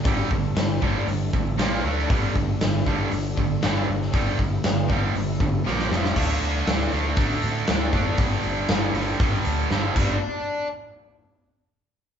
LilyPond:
<<
  \new Staff \with { instrumentName = "Tonewheel organ" } { \time 4/4 \key d \dorian \tempo 4 = 118 << { <g a'>2. <bes c''>8 <d' e''>8 | <g a'>1~ | <g a'>2. <bes c''>8 <f g'>8 | r1 |
r1 | r1 | } \\ { d'2. f'8 a'8 | d'1 | e'2. f'8 c'8 | r1 |
r1 | r1 | } >> }
  \new Staff \with { instrumentName = "Distorted electric guitar" } { \clef bass \time 4/4 \key d \dorian <g, d g>8 <g, d>8 <g, d>8 <g, d g>8 <g, d>8 <g, d>8 <bes, f bes>8 <d a d'>8 | <g, d g>8 <g, d>8 <g, d>8 <g, d g>8 <g, d>8 <g, d>8 <g, d g>8 <g, d>8 | <g, d g>8 <g, d>8 <g, d>8 <g, d g>8 <g, d>8 <g, d>8 <bes, f bes>8 <f, c f>8 | <d a d'>4 <d a d'>8 <d a d'>8 <d a d'>4 <d a d'>8 <d a d'>8 |
<g, d g>4 <g, d g>8 <g, d g>8 <g, d g>4 <g, d g>8 <g, d g>8 | r1 | }
  \new Staff \with { instrumentName = "Distorted electric guitar" } { \clef bass \time 4/4 \key d \dorian <g, d g>8 <g, d>8 <g, d>8 <g, d g>8 <g, d>8 <g, d>8 <bes, f bes>8 <d a d'>8 | <g, d g>8 <g, d>8 <g, d>8 <g, d g>8 <g, d>8 <g, d>8 <g, d g>8 <g, d>8 | <g, d g>8 <g, d>8 <g, d>8 <g, d g>8 <g, d>8 <g, d>8 <bes, f bes>8 <f, c f>8 | <d a d'>4 <d a d'>8 <d a d'>8 <d a d'>4 <d a d'>8 <d a d'>8 |
<g, d g>4 <g, d g>8 <g, d g>8 <g, d g>4 <g, d g>8 <g, d g>8 | r1 | }
  \new Staff \with { instrumentName = "Picked electric bass" } { \clef bass \time 4/4 \key d \dorian g,,8 g,,8 g,,8 g,,8 g,,8 a,,8 bes,,8 d,8 | g,,8 g,,8 g,,8 g,,8 g,,8 g,,8 g,,8 g,,8 | g,,8 g,,8 g,,8 g,,8 g,,8 g,,8 bes,,8 f,,8 | d,8 d,8 d,8 d,8 d8 a,8 d,8 fis,,8 |
g,,8 g,,8 g,,8 g,,8 g,8 d,8 g,,8 g,,8 | r1 | }
  \new DrumStaff \with { instrumentName = "Drums" } \drummode { \time 4/4 <hho bd>8 bd8 <hho sn>8 bd8 hho8 bd8 <hho sn>8. sn16 | <hho bd>8 bd8 <hho sn>8 bd8 hho8 bd8 <hho sn>8. sn16 | <hho bd>8 bd8 <hho sn>8 bd8 hho8 bd8 sn16 sn16 sn16 sn16 | <cymc bd>8 hho8 <hho sn>16 sn16 hho8 <hho bd>8 hho8 <hho sn>8 <hho bd>8 |
<hho bd>8 hho8 <hho sn>8 hho8 <hho bd>8 hho8 sn8 <cymc bd>8 | r4 r4 r4 r4 | }
>>